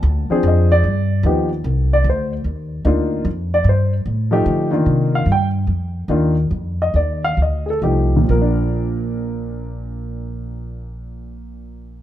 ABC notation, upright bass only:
X:1
M:4/4
L:1/8
Q:"Swing" 1/4=147
K:Bb
V:1 name="Upright bass" clef=bass
D,, z F,,2 G,,2 E,,2 | C,,2 D,,2 E,,2 D,,2 | F,,2 G,,2 A,,2 D,2 | C,2 G,,2 F,,2 E,,2 |
F,,2 E,,2 D,,2 C,,2 | B,,,8- | B,,,8 |]